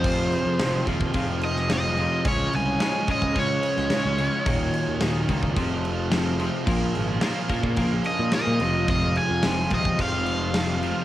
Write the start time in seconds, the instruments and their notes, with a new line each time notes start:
Already playing: picked electric bass F1, analog synth pad F3 C4 G#4, overdriven electric guitar C5
0.04 clean electric guitar F2 C3 F3, kick, crash
0.32 crash
0.46 picked electric bass F2
0.60 picked electric bass F1, clean electric guitar F2 C3 F3, snare, crash
0.87 picked electric bass D#1, clean electric guitar F2 C3 F3, kick, crash
1.01 kick
1.14 picked electric bass F1, clean electric guitar F2 C3 F3, kick, crash
1.41 overdriven electric guitar D#5, crash
1.56 snare
1.70 clean electric guitar F2 C3 F3, overdriven electric guitar D#5, snare, crash
1.97 clean electric guitar F2 C3 F3, crash
2.24 picked electric bass C#2, clean electric guitar C#3 G#3 C#4, analog synth pad C#4 C#5, kick, crash
2.28 overdriven electric guitar C#5
2.53 picked electric bass C2, overdriven electric guitar G#5, crash
2.80 clean electric guitar C#3 G#3 C#4, snare, crash
3.08 clean electric guitar C#3 G#3 C#4, overdriven electric guitar D#5, kick, crash
3.22 picked electric bass C#2, kick
3.35 picked electric bass C#2, clean electric guitar C#3 G#3 C#4, kick, crash
3.39 overdriven electric guitar C#5
3.63 crash
3.76 picked electric bass C#2, snare
3.90 clean electric guitar C#3 G#3 C#4, snare, crash
4.05 picked electric bass C#2
4.18 clean electric guitar C#3 G#3 C#4, crash
4.45 picked electric bass D#1, clean electric guitar D#2 A#2 D#3, analog synth pad D#3 F#4, kick, crash
4.74 crash
4.88 picked electric bass D#2
5.01 picked electric bass D#1, clean electric guitar D#2 A#2 D#3, snare, crash
5.28 picked electric bass C#2, clean electric guitar D#2 A#2 D#3, kick, crash
5.43 kick
5.56 picked electric bass F1, clean electric guitar F2 C3 F3, analog synth pad F3 C4 G#4, kick, crash
5.85 crash
6.11 clean electric guitar F2 C3 F3, snare, crash
6.39 clean electric guitar F2 C3 F3, crash
6.66 picked electric bass A#1, clean electric guitar A#2 F3 A#3, analog synth pad C#3 A#3, kick, crash
6.95 picked electric bass G#1, crash
7.21 clean electric guitar A#2 F3 A#3, snare, crash
7.49 clean electric guitar A#2 F3 A#3, kick, crash
7.63 picked electric bass A#2, kick
7.76 picked electric bass A#1, clean electric guitar A#2 F3 A#3, kick, crash
8.04 overdriven electric guitar D#5, crash
8.19 picked electric bass A#2
8.32 clean electric guitar A#2 F3 A#3, overdriven electric guitar D#5, snare, crash
8.47 picked electric bass A#2
8.60 picked electric bass F1, clean electric guitar F2 C3 F3, analog synth pad C3 G#3 F4, crash
8.88 clean electric guitar F2 C3 F3, overdriven electric guitar D#5, kick, crash
9.16 overdriven electric guitar G#5, crash
9.30 picked electric bass F2
9.43 picked electric bass F1, clean electric guitar F2 C3 F3, snare, crash
9.70 picked electric bass D#1, clean electric guitar F2 C3 F3, kick, crash
9.75 overdriven electric guitar D#5
9.85 kick
9.99 picked electric bass F1, clean electric guitar F2 C3 F3, overdriven electric guitar F5, kick, crash
10.26 crash
10.53 clean electric guitar F2 C3 F3, snare, crash
10.83 clean electric guitar F2 C3 F3, crash